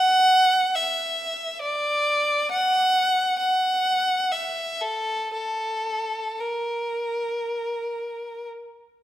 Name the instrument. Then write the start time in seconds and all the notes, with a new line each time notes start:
violin
Already playing: F#5
0.75 E5
1.62 D5
2.51 F#5
3.39 F#5
4.32 E5
4.82 A4
5.34 A4
6.40 A#4